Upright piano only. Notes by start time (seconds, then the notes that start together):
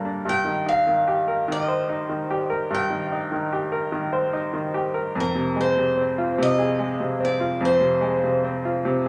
Already playing: G2 D3 G3 A#3 D4 A#4
0.05 D4
0.25 G2
0.45 D#3
0.66 D#4
0.87 D#3
1.07 G4
1.28 A#4
1.48 D#3
1.68 C5
1.89 D#4
2.09 D#3
2.31 G4
2.50 A#4
2.70 G2
2.90 D#3
3.12 D#4
3.32 D#3
3.52 G4
3.72 A#4
3.92 D#3
4.13 C5
4.33 D#4
4.54 D#3
4.74 G4
4.94 A#4
5.15 F2
5.35 C3
5.56 G#3
5.77 C3
5.97 C4
6.18 F4
6.38 C3
6.59 G#4
6.79 G#3
7.00 C3
7.20 C4
7.40 F4
7.61 F2
7.81 C3
8.01 G#3
8.23 C3
8.44 C4
8.65 F4
8.85 C3